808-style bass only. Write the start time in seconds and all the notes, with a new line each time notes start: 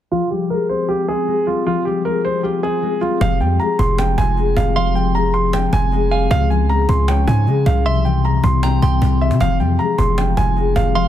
3.21 F1
3.40 F2
3.79 F1
4.18 F1
4.57 F1
5.73 F1
6.31 C#2
6.89 C#2
7.28 G#2
7.47 C#3
7.66 C2
8.44 C2
8.82 C2
9.02 C2
9.31 C3
9.40 F1
9.60 F2
9.98 F1
10.37 F1
10.76 F1